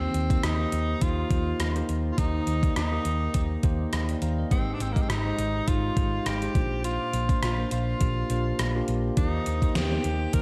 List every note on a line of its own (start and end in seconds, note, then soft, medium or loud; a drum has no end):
0.00 0.69 D#3 medium
0.00 0.19 A#3 medium
0.00 0.46 C4 medium
0.00 0.19 D#4 medium
0.00 0.19 G4 medium
0.00 0.20 C5 medium
0.14 0.35 D#2 medium
0.14 closed hi-hat medium
0.30 0.52 A#3 medium
0.30 0.52 D#4 medium
0.30 0.52 G4 medium
0.30 0.52 C5 medium
0.30 kick medium
0.30 closed hi-hat medium
0.43 0.64 D#2 medium
0.43 1.04 D#4 medium
0.43 cross-stick loud
0.43 closed hi-hat medium
0.59 0.92 A#3 medium
0.59 0.92 D#4 medium
0.59 0.93 G4 medium
0.59 0.93 C5 medium
0.72 0.93 D#2 medium
0.72 closed hi-hat medium
1.01 1.23 D#2 medium
1.01 1.25 A#3 medium
1.01 1.25 D#4 medium
1.01 1.89 F4 loud
1.01 1.25 G4 medium
1.01 1.25 C5 medium
1.01 kick medium
1.01 closed hi-hat medium
1.30 1.52 D#2 medium
1.30 1.65 A#3 medium
1.30 1.65 D#4 medium
1.30 1.65 G4 medium
1.30 1.65 C5 medium
1.30 kick loud
1.30 closed hi-hat medium
1.60 1.81 D#2 loud
1.60 cross-stick loud
1.60 closed hi-hat medium
1.75 2.09 A#3 medium
1.75 2.09 D#4 medium
1.75 2.09 G4 medium
1.75 2.10 C5 medium
1.75 closed hi-hat soft
1.89 2.10 D#2 medium
1.89 closed hi-hat medium
2.12 2.20 F4 medium
2.18 2.39 D#2 medium
2.18 3.02 D#3 medium
2.18 2.52 A#3 medium
2.18 2.76 D#4 loud
2.18 2.52 D#4 medium
2.18 2.52 G4 medium
2.18 2.53 C5 medium
2.18 kick loud
2.18 closed hi-hat medium
2.47 2.68 D#2 medium
2.47 closed hi-hat medium
2.63 2.85 A#3 medium
2.63 2.85 D#4 medium
2.63 2.85 G4 medium
2.63 2.85 D5 medium
2.63 kick medium
2.63 closed hi-hat medium
2.76 2.97 D#2 loud
2.76 3.60 D#4 loud
2.76 cross-stick loud
2.76 closed hi-hat medium
2.92 3.25 A#3 medium
2.92 3.25 D#4 medium
2.92 3.26 G4 medium
2.92 3.26 A#4 medium
3.05 3.26 D#2 medium
3.05 closed hi-hat medium
3.34 3.56 D#2 medium
3.34 3.58 A#3 medium
3.34 3.58 D#4 medium
3.34 3.58 G4 medium
3.34 3.58 C5 medium
3.34 kick medium
3.34 closed hi-hat medium
3.63 3.85 D#2 medium
3.63 3.98 A#3 medium
3.63 3.98 D#4 medium
3.63 3.98 G4 medium
3.63 3.93 C5 medium
3.63 kick loud
3.63 closed hi-hat medium
3.93 4.14 D#2 medium
3.93 4.20 D#5 medium
3.93 4.09 F5 medium
3.93 4.08 A#5 medium
3.93 cross-stick loud
3.93 closed hi-hat medium
4.09 4.22 D5 medium
4.09 4.21 G5 medium
4.09 closed hi-hat soft
4.22 4.43 D#2 medium
4.22 4.38 C5 medium
4.22 4.37 F5 medium
4.22 4.49 A#5 medium
4.22 closed hi-hat medium
4.38 4.66 A#4 medium
4.38 4.66 D#5 medium
4.51 4.72 G#1 medium
4.51 5.35 G#2 medium
4.51 4.85 G#3 medium
4.51 4.75 C4 medium
4.51 4.85 D#4 medium
4.51 4.86 G4 medium
4.51 4.86 C5 medium
4.51 kick loud
4.51 closed hi-hat medium
4.74 4.84 D4 medium
4.80 5.01 G#1 medium
4.80 4.94 C4 medium
4.80 closed hi-hat medium
4.92 5.18 G#3 medium
4.92 5.03 A#3 medium
4.92 kick medium
4.96 5.18 D#4 medium
4.96 5.18 G4 medium
4.96 5.18 D#5 medium
4.96 closed hi-hat medium
5.01 5.11 C4 medium
5.09 5.30 G#1 medium
5.09 5.69 D#4 medium
5.09 cross-stick loud
5.09 closed hi-hat medium
5.25 5.58 G#3 medium
5.25 5.59 D#4 medium
5.25 5.59 G4 medium
5.25 5.59 C5 medium
5.38 5.59 G#1 medium
5.38 closed hi-hat medium
5.67 5.89 G#1 medium
5.67 5.91 G#3 medium
5.67 5.91 D#4 medium
5.67 6.28 F4 loud
5.67 5.91 G4 medium
5.67 5.91 C5 medium
5.67 kick medium
5.67 closed hi-hat medium
5.96 6.18 G#1 medium
5.96 6.31 G#3 medium
5.96 6.31 D#4 medium
5.96 6.31 G4 medium
5.96 6.31 C5 medium
5.96 kick loud
5.96 closed hi-hat medium
6.26 6.47 G#1 medium
6.26 6.84 G4 loud
6.26 cross-stick loud
6.26 closed hi-hat medium
6.42 6.55 G#3 medium
6.42 6.55 D#4 medium
6.42 6.55 G4 medium
6.42 6.55 C5 medium
6.42 closed hi-hat soft
6.55 6.97 A#1 medium
6.55 7.39 A#2 medium
6.55 7.13 A#3 medium
6.55 7.13 D4 medium
6.55 7.14 F4 medium
6.55 7.14 C5 medium
6.55 kick loud
6.55 closed hi-hat medium
6.84 7.39 F4 loud
6.84 closed hi-hat medium
7.13 7.34 A#1 medium
7.13 closed hi-hat medium
7.29 7.51 A#3 medium
7.29 7.51 D4 medium
7.29 7.51 F4 medium
7.29 7.52 C5 medium
7.29 kick medium
7.29 closed hi-hat medium
7.43 7.64 A#1 loud
7.43 7.70 F4 medium
7.43 cross-stick loud
7.43 closed hi-hat medium
7.58 7.92 A#3 medium
7.58 7.92 D4 medium
7.58 7.92 F4 medium
7.58 7.92 C5 medium
7.71 7.93 A#1 medium
7.71 8.84 F4 medium
7.71 closed hi-hat medium
8.00 8.22 A#1 medium
8.00 8.24 A#3 medium
8.00 8.24 D4 medium
8.00 8.24 F4 medium
8.00 8.24 G4 medium
8.00 kick medium
8.00 closed hi-hat medium
8.30 8.51 A#1 loud
8.30 8.64 A#3 medium
8.30 8.64 D4 medium
8.30 8.64 F4 medium
8.30 8.64 C5 medium
8.30 closed hi-hat medium
8.59 8.80 A#1 medium
8.59 cross-stick loud
8.59 closed hi-hat medium
8.75 9.08 A#3 medium
8.75 9.08 D4 medium
8.75 9.09 F4 medium
8.75 9.09 G4 medium
8.88 9.09 A#1 medium
8.88 closed hi-hat medium
9.17 9.38 D#2 medium
9.17 10.01 D#3 medium
9.17 9.51 A#3 medium
9.17 9.51 D#4 medium
9.17 9.77 D#4 medium
9.17 9.52 G4 medium
9.17 9.52 C5 medium
9.17 kick loud
9.17 closed hi-hat medium
9.46 9.68 D#2 medium
9.46 closed hi-hat medium
9.62 9.84 A#3 medium
9.62 9.84 D#4 medium
9.62 9.84 G4 medium
9.62 9.85 C5 medium
9.62 kick medium
9.62 closed hi-hat medium
9.75 9.97 D#2 medium
9.75 10.36 G4 medium
9.75 snare loud
9.75 closed hi-hat medium
9.92 10.25 A#3 medium
9.92 10.25 D#4 medium
9.92 10.25 G4 medium
9.92 10.25 C5 medium
10.04 10.26 D#2 medium
10.04 closed hi-hat medium
10.33 10.42 D#2 medium
10.33 10.42 A#3 medium
10.33 10.42 D#4 medium
10.33 10.42 G4 medium
10.33 10.42 A#4 loud
10.33 10.42 C5 medium
10.33 kick medium
10.33 closed hi-hat medium